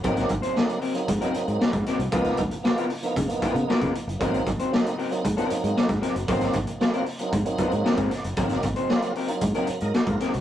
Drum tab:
HH |xxxx-xoxxxxx-xxx|xxxx-xoxxxxx-xxx|xxxx-xoxxxxx-xxx|xxxx-xoxxxxx-xxx|
SD |-o--o-------o-o-|-o--o-------o---|----o-------o-o-|-o--o-------o-o-|
BD |o-o-----o----o--|o-o-----o-o--o--|o-o-----o----o--|o-o-----o-o--o--|

HH |xxxx-xoxxxxx-xxx|
SD |-o--o-------o-o-|
BD |o-o-----o----o--|